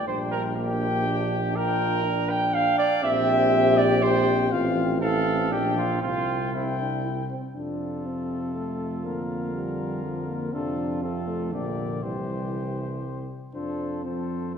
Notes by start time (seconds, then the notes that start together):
0.07 A#1 G3 D4 C5 G5
0.31 A#4
0.56 A#3 D4 G4 G5
1.07 D4
1.56 D4 F4 A#4 G5
2.05 D4
2.30 G5
2.54 D4 F5 G5
2.78 D5
3.03 A#1 C4 G4 E5 G5
3.77 D5
4.02 C4 C5 G5
4.52 A1 C4 F4 F5
5.02 C4 E4 A4 F5
5.52 A#1 D4 G4 G5
5.77 F4
6.02 C2 C4 F4 G5
6.53 C4 E4 G5
6.79 D4
7.04 E4
7.30 C4
7.55 F2 C3 D4 F4 A4
8.06 C4
8.55 A3
9.05 D3 A#3 A#4
9.54 G3
10.04 F3
10.28 A#3
10.53 F2 C3 D4 F4 A4
11.03 C3 C4 F4 A4
11.27 A3
11.52 A#1 D3 A#3 G4 D5
12.02 C2 E3 G3 G4 C5
13.53 F2 F3 D4 A4 C5
14.04 F3 C4 A4 C5
14.54 A3 A4